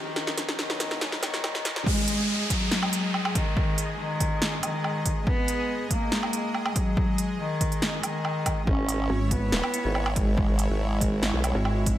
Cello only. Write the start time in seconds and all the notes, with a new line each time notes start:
Already playing: D#3
0.59 D#3
1.23 D#3
1.86 G#3
2.50 F#3
3.35 D#3
3.99 D#3
4.63 D#3
5.27 B3
5.91 A#3
6.76 F#3
7.40 D#3
8.03 D#3
8.67 C#4
9.31 B3
10.16 G#3
10.80 G#3
11.44 G#3